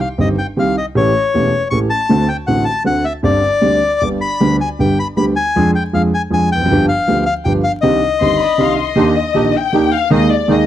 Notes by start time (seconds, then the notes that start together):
0.00 F5
0.18 G1 G2 D#3 G3 C4 G4 D#5
0.38 G5
0.57 C2 C3 D#3 G3 C4 G4 F5
0.78 D#5
0.95 A1 A2 E3 A3 C#4 G4 C#5
1.34 E1 E2 E3 A3 C#4 G4
1.71 A1 A2 E3 A3 C#4 G4 C#6
1.90 A5
2.09 D2 D3 A3 C4 F#4
2.28 G5
2.47 A1 A2 D3 A3 C4 F#4 F#5
2.65 A5
2.84 D2 D3 A3 C4 F#4 F#5
3.05 E5
3.23 G1 G2 D3 G3 C4 G4 D5
3.61 D2 D3 G3 C4 G4
4.00 G1 G2 D3 G3 B3 G4 D6
4.21 B5
4.40 D2 D3 G3 B3 G4
4.61 G#5
4.79 G1 G2 D3 G3 B3 G4 G5
4.99 B5
5.17 D2 D3 G3 B3 G4 B5
5.36 G#5
5.56 F2 F3 G#3 D4 G#4
5.75 G5
5.93 F2 F3 G#3 D4 G#4 F5
6.14 G#5
6.30 F2 F3 G#3 D4 G#4 G#5
6.52 E2 G5
6.61 F2
6.66 F#2
6.71 G1 G2 F3 B3 D4 G4
6.88 F5
7.07 D2 D3 F3 B3 D4 G4
7.26 F5
7.45 G1 G2 F3 B3 D4 G4 G5
7.64 F5
7.81 C2 C3 D#3 C4 D4 G4 D#5
8.20 G1 G2 D#3 C4 D4 G4 C6
8.39 D5 B5
8.58 C2 C3 D#3 C4 D4 G4 F5 C6
8.79 D#5
8.96 D#2 D#3 A#3 D4 D#4 G4
9.34 A#1 A#2 D#3 A#3 D4 D#4 G4
9.56 G5
9.73 D#2 D#3 A#3 D4 D#4 G4
9.95 F5
10.10 D#2 D#3 G#3 A#3 D#4 G#4 D#5
10.33 D5
10.48 D#2 D#3 G#3 A#3 D#4 G#4
10.52 D#5